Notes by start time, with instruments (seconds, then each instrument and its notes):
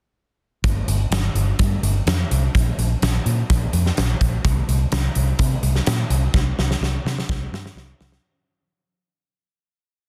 0.64 fingered electric bass G1, kick, closed hi-hat
0.87 fingered electric bass G1, closed hi-hat
1.11 fingered electric bass G1, snare, closed hi-hat
1.35 fingered electric bass G1, closed hi-hat
1.59 fingered electric bass G2, kick, closed hi-hat
1.83 fingered electric bass G1, closed hi-hat
2.06 fingered electric bass F2, snare, closed hi-hat
2.31 fingered electric bass C2, closed hi-hat
2.55 fingered electric bass A#1, kick, closed hi-hat
2.78 fingered electric bass A#1, closed hi-hat
3.02 fingered electric bass A#1, snare, closed hi-hat
3.26 fingered electric bass A#2, closed hi-hat
3.50 fingered electric bass A#1, kick, closed hi-hat
3.73 fingered electric bass F2, closed hi-hat
3.86 snare
3.97 fingered electric bass A#1, snare, closed hi-hat
4.21 fingered electric bass A#1, kick, closed hi-hat
4.45 fingered electric bass C2, kick, closed hi-hat
4.68 fingered electric bass C2, closed hi-hat
4.92 fingered electric bass C2, snare, closed hi-hat
5.15 fingered electric bass C2, closed hi-hat
5.39 fingered electric bass C3, kick, closed hi-hat
5.62 fingered electric bass C2, closed hi-hat
5.75 snare
5.87 fingered electric bass A#2, snare, closed hi-hat
6.10 fingered electric bass C2, closed hi-hat
6.34 fingered electric bass C2, kick, snare
6.58 fingered electric bass C2, snare
6.71 snare
6.81 fingered electric bass C2, snare
7.05 fingered electric bass C3, snare
7.18 snare
7.29 fingered electric bass C2, kick, snare
7.52 fingered electric bass G2, snare
7.66 snare
7.75 fingered electric bass C2, snare
8.00 fingered electric bass C2, snare
8.12 snare